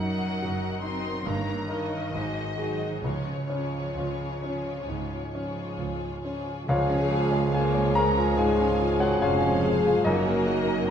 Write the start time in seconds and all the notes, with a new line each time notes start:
Already playing: F#1 F#2 F#3 F#5
0.00 F#3 D#4 A#4 D#5
0.42 F#1 F#4
0.82 F#3 C4 D#4 A#4 D#5 C6
1.25 G1 G2 D#3 A#3 D#4 A#4 C#5 A#5
1.68 D#3 D#4 A#4 C#5 D#5
2.12 G#1 G#2 F#3 D#4 G#4 C5
2.57 F#3 D#4 F#4 G#4 C5
3.03 C#2 C#3 F3 F4 G#4 C#5
3.48 F3 C#4 F4 G#4 C#5
3.95 C#2 F4
4.43 F3 C#4 F4 G#4 C#5
4.88 C#2 G#2
5.32 F3 C#4 F4 G#4 C#5
5.78 C#2 F4
6.22 F3 C#4 F4 G#4 C#5
6.66 C#2 F3 G#3 F4 G#4 C#5 F5 G#5
6.90 C#4
7.12 F4
7.31 C#5
7.53 A#3 F4 C#5 G#5
7.74 C#5
7.95 G#3 G#4 A#4 A#5
8.17 F4
8.37 G#2 G#3 F4 G#4 F5 G#5
8.59 C#4
8.80 F4
9.00 F#4 C#5 F#5
9.21 F1 F2 C#4 F4 C5 C#5 F5 G#5
9.42 C#5
9.64 G#4
9.87 F4
10.04 F#1 F#2 F#3 A#3 D#4 F#4 A#4 C#5 D#5
10.27 A#3
10.47 F#4 D#5
10.68 A#4
10.87 D#4 F#5